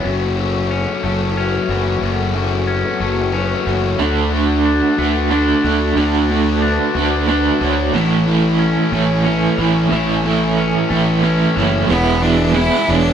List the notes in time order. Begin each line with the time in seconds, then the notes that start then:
Already playing: E5
0.04 F#1 F#2 F#3 A3 C#4 F#4 A4 F#5 C#6
0.38 F#3 A3 C#4 F#4
0.71 C#4
1.03 F#1 F#3 A3 C#4 F#4 C#5
1.36 F#3 A3 C#4 F#4 B4
1.69 F#1 E3 F#3 A3 C#4 F#4
2.01 F#1 F#2 F#3 A3 C#4 F#4
2.34 F#3 A3 C#4 F#4
2.67 C#4 B4
3.00 F#1 F#3 A3 C#4 F#4
3.33 F#3 A3 C#4 F#4 B4
3.66 F#1 E3 F#3 A3 C#4 F#4 C#5
3.99 D2 D3 A3 D4 F#4 A5
4.32 D3 A3 D4 F#4
4.65 D4
4.98 D2 D3 A3 D4 F#4 B4
5.32 D3 A3 D4 F#4 A4
5.64 D2 D3 A3 D4 F#4
5.96 D2 D3 A3 D4
6.00 F#4
6.31 D3 A3 D4 F#4
6.62 D4 B4
6.95 D2 D3 A3 D4 F#4
7.28 D3 A3 D4 F#4 B4
7.61 D2 D3 A3 D4 F#4 C#5
7.93 A1 A2 E3 A3 C#4 E4 E5 G#5 C#6
8.28 A2 E3 A3 C#4 E4
8.59 C#4
8.92 A1 A2 E3 A3 C#4 E4 C#5
9.25 A2 E3 A3 C#4 E4 B4
9.58 A1 A2 E3 A3 C#4 E4
9.91 A1 A2 E3 A3 C#4 E4
10.24 A2 E3 A3 C#4 E4
10.57 C#4 B4
10.90 A1 A2 E3 A3 C#4 E4
11.22 A2 E3 A3 C#4 E4 B4
11.56 F#1 A2 E3 A3 C#4 E4 C#5
11.89 E1 E3 G#3 B3 E4 B4 E5 G#5 E6
12.22 G#3 B3 D4 E4
12.55 E3 G#3 B3 E4
12.87 E1 E3 G#3 B3 D4 E4 C#5